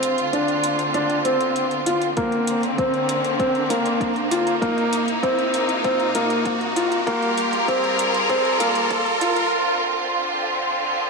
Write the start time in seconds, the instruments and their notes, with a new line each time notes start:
Already playing: sub bass D2, string section D3 C4 F4, felt piano C4, riser
0.03 closed hi-hat
0.18 closed hi-hat
0.33 felt piano D4, closed hi-hat
0.48 closed hi-hat
0.64 closed hi-hat
0.79 closed hi-hat
0.94 felt piano D4, closed hi-hat
1.10 closed hi-hat
1.25 felt piano C4, closed hi-hat
1.41 closed hi-hat
1.56 closed hi-hat
1.71 closed hi-hat
1.86 felt piano F4, closed hi-hat
2.02 closed hi-hat
2.17 sub bass A#1, string section D3 A#3 C4, felt piano A#3, kick, closed hi-hat
2.32 closed hi-hat
2.47 closed hi-hat
2.63 closed hi-hat
2.78 felt piano C4, kick, closed hi-hat
2.94 closed hi-hat
3.09 closed hi-hat
3.24 closed hi-hat
3.39 felt piano C4, kick, closed hi-hat
3.55 closed hi-hat
3.70 felt piano A#3, closed hi-hat
3.86 closed hi-hat
4.01 kick, closed hi-hat
4.16 closed hi-hat
4.31 felt piano F4, closed hi-hat
4.47 closed hi-hat
4.62 sub bass C2, string section C3 D#4, felt piano A#3, kick, closed hi-hat
4.78 closed hi-hat
4.93 closed hi-hat
5.08 closed hi-hat
5.23 felt piano C4, kick, closed hi-hat
5.39 closed hi-hat
5.54 closed hi-hat
5.69 closed hi-hat
5.84 felt piano C4, kick, closed hi-hat
6.00 closed hi-hat
6.15 felt piano A#3, closed hi-hat
6.30 closed hi-hat
6.46 kick, closed hi-hat
6.61 closed hi-hat
6.76 felt piano F4, closed hi-hat
6.92 closed hi-hat
7.07 string section G3 F4 A#4, felt piano A#3, kick, closed hi-hat
7.22 closed hi-hat
7.38 closed hi-hat
7.53 closed hi-hat
7.68 felt piano C4, kick, closed hi-hat
7.84 closed hi-hat
7.99 closed hi-hat
8.14 closed hi-hat
8.29 felt piano C4, kick, closed hi-hat
8.45 closed hi-hat
8.60 felt piano A#3, closed hi-hat
8.75 closed hi-hat
8.91 kick, closed hi-hat
9.06 closed hi-hat
9.21 felt piano F4, closed hi-hat
9.36 closed hi-hat
9.52 string section D3 C4
10.74 swell